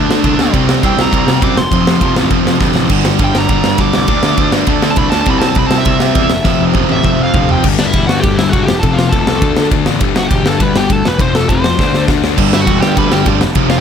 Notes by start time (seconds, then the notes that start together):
Already playing: D3 A3 D4
0.09 D3, snare
0.24 C2 D3 A3 D4, kick, ride
0.39 D2, snare
0.54 C2 C3 G3 C4, kick, ride
0.69 snare
0.82 C2 C3 G3 C4 G5, kick, ride
0.97 C2, snare
1.01 A#5
1.12 C2 C3 G3 C4, kick, ride
1.26 C3, snare
1.41 F#2 C3 G3 C4 D6, kick, ride
1.56 F1 C6, snare
1.71 F1 F2 C3 F3, kick, ride
1.86 F1, snare
2.00 F1 F2 C3 F3, kick, ride
2.16 A1, snare
2.30 F1 F2 C3 F3, kick, ride
2.45 F2, snare
2.59 D2 F2 C3 F3, kick, snare
2.75 A1, snare
2.89 G1 G2 D3 G3, kick, crash
3.05 snare
3.19 G1 G2 D3 G3, kick, ride
3.24 G5
3.35 G1 A#5, snare
3.49 G1 G2 D3 G3, kick, ride
3.64 G2, snare
3.78 D2 G2 D3 G3 D6, kick, ride
3.93 C2 D6, snare
4.08 D2 D3 A3 D4, kick, ride
4.23 D2, snare
4.37 D2 D3 A3 D4, kick, ride
4.52 G2, snare
4.67 D2 D3 A3 D4, kick, ride
4.82 D3, snare
4.91 A5
4.96 C2 D3 A3 D4 B5, kick, ride
5.10 D2 A5, snare
5.21 A5
5.26 C2 C3 G3 C4, kick, ride
5.31 B5
5.39 A5, snare
5.49 A5
5.55 C2 C3 G3 C4 B5, kick, ride
5.67 C2 A5, snare
5.78 E5
5.85 C2 C3 G3 C4, kick, ride
6.00 C3, snare
6.15 E2 C3 G3 C4, kick, ride
6.30 F1, snare
6.44 F1 F2 C3 F3, kick, snare
6.61 F1
6.74 F1 F2 C3 F3, kick, high tom
6.89 A1 E5, high tom
7.04 F1 F2 C3 F3, kick, mid tom
7.21 F2 F5
7.34 D2 F2 C3 F3, kick, floor tom
7.49 F1 G5, floor tom
7.64 G1 G2 D3 G3, kick, crash
7.79 G1 D4 D5, snare
7.86 E4 E5
7.93 E1 G2 D3 G3, kick, ride
8.07 G2 F#4 F#5, snare
8.20 D2 G4 G5, kick, ride
8.24 G2 D3 G3
8.35 G1 E4 E5, snare
8.49 G3 F#4 F#5, kick, ride
8.54 F#1 G2 D3
8.63 G5
8.67 F1 G4, snare
8.80 F1 A4 A5, kick, ride
8.84 F2 C3 F3
8.93 F4 F5
8.99 snare
9.09 F1 F3 A4 A5, kick, ride
9.13 F2 C3
9.27 C2, snare
9.41 D2 D3 A3 D4, kick, ride
9.57 D3, snare
9.71 D2 D3 A3 D4, kick, ride
9.86 A1, snare
10.00 G1 G2 D3 G3, kick, ride
10.16 G1 F#4 F#5, snare
10.27 E1 G2 D3 G3 G4 G5, kick, ride
10.44 G2, snare
10.48 A4 A5
10.60 D2 G2 D3 G3 B4 B5, kick, ride
10.75 G1 G4 G5, snare
10.90 D2 G2 D3 G3 A4 A5, kick, ride
11.05 F1 B4 B5, snare
11.19 F1 F2 C3 F3 C5 C6, kick, ride
11.35 A4 A5, snare
11.49 F1 F2 C3 F3 C5 C6, kick, ride
11.64 F1, snare
11.78 D2 D3 A3 D4, kick, snare
11.93 D3, snare
12.08 D2 D3 A3 D4, kick, snare
12.23 D2, snare
12.37 G1 G2 D3 G3, kick, crash
12.53 G1 E4 E5, snare
12.60 F#4 F#5
12.67 E1 G2 D3 G3, kick, ride
12.82 G2 G4 G5, snare
12.96 D2 G2 D3 G3 B4 B5, kick, ride
13.12 G1 G4 G5, snare
13.26 D2 G2 D3 G3, kick, ride
13.41 F1, snare
13.55 F1 F2 C3 F3, kick, ride
13.70 F4 F5, snare